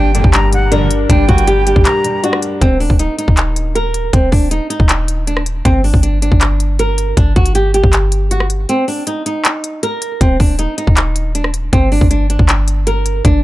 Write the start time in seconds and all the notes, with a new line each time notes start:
Already playing: G1 G2 G3 D4 A#4 G5
0.15 A#1 G2 D3 G3 D4, closed hi-hat
0.24 G1, kick
0.33 G2 A#5, clap, closed hi-hat
0.53 G2 F#5, closed hi-hat
0.72 A#1 G2 D3 D4 A#4, closed hi-hat
0.91 closed hi-hat
1.10 G1 G2 D4 G5, kick, closed hi-hat
1.28 G1 G2 F#4, kick, closed hi-hat, open hi-hat
1.38 closed hi-hat
1.47 G2 G4, closed hi-hat
1.67 G3 G4, closed hi-hat
1.76 G1, kick
1.85 G2 A#5, clap, closed hi-hat
2.04 G2, closed hi-hat
2.23 D4 F#4, closed hi-hat
2.33 cross-stick
2.42 closed hi-hat
2.61 D#1 C4, kick, closed hi-hat
2.80 D4, open hi-hat
2.90 D#1, kick
2.99 D#4, closed hi-hat
3.18 D#4, closed hi-hat
3.28 D#1, kick
3.37 clap, closed hi-hat
3.56 closed hi-hat
3.75 A#4, closed hi-hat
3.94 closed hi-hat
4.13 D#1 C4, kick, closed hi-hat
4.32 D#1 D4, kick, open hi-hat
4.51 D#4, closed hi-hat
4.70 D#4, closed hi-hat
4.80 D#1, kick
4.89 clap, closed hi-hat
5.08 closed hi-hat
5.27 D4, closed hi-hat
5.37 cross-stick
5.46 closed hi-hat
5.65 G1 C4, kick, closed hi-hat
5.84 D4, open hi-hat
5.94 G1, kick
6.03 D4, closed hi-hat
6.22 D4, closed hi-hat
6.32 G1, kick
6.41 clap, closed hi-hat
6.60 closed hi-hat
6.79 A#4, closed hi-hat
6.98 closed hi-hat
7.17 G1 D4, kick, closed hi-hat
7.36 G1 F#4, kick, closed hi-hat, open hi-hat
7.46 closed hi-hat
7.55 G4, closed hi-hat
7.74 G4, closed hi-hat
7.84 G1, kick
7.93 clap, closed hi-hat
8.12 closed hi-hat
8.31 F#4, closed hi-hat
8.40 cross-stick
8.50 closed hi-hat
8.69 C4, closed hi-hat
8.88 D4, open hi-hat
9.07 D#4, closed hi-hat
9.26 D#4, closed hi-hat
9.45 clap, closed hi-hat
9.64 closed hi-hat
9.83 A#4, closed hi-hat
10.02 closed hi-hat
10.21 D#1 C4, kick, closed hi-hat
10.40 D#1 D4, kick, open hi-hat
10.59 D#4, closed hi-hat
10.78 D#4, closed hi-hat
10.87 D#1, kick
10.97 clap, closed hi-hat
11.16 closed hi-hat
11.35 D4, closed hi-hat
11.44 cross-stick
11.54 closed hi-hat
11.73 G1 C4, kick, closed hi-hat
11.92 D4, open hi-hat
12.01 G1, kick
12.11 D4, closed hi-hat
12.30 D4, closed hi-hat
12.39 G1, kick
12.49 clap, closed hi-hat
12.68 closed hi-hat
12.87 A#4, closed hi-hat
13.06 closed hi-hat
13.25 G1 D4, kick, closed hi-hat